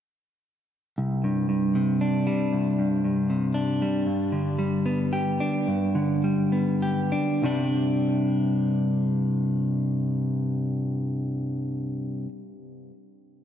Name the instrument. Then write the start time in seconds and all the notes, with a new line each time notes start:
clean electric guitar
0.98 C2
1.24 G2
1.49 G2
1.75 C3
2.01 D4
2.27 G3
2.53 C2
2.79 G2
3.04 G2
3.30 C3
3.54 D4
3.82 G3
4.07 G2
4.32 D3
4.59 G3
4.86 B3
5.13 G4
5.40 D4
5.68 G2
5.95 D3
6.24 G3
6.52 B3
6.82 G4
7.12 D4
7.42 C2 G2 C3 G3 D4